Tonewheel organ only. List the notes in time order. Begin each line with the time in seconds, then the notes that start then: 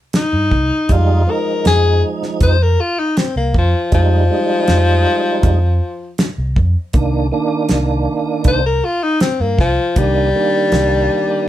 0.89 G3 G#3 D#4
1.27 F3 G#3 D#4
3.91 G3 G#3 D#4
4.30 G3 G#3 D#4
6.94 D#3 A#3 D4
7.32 D#3 A#3 D4
9.96 D#3 A#3 D4
10.35 D#3 A#3 D4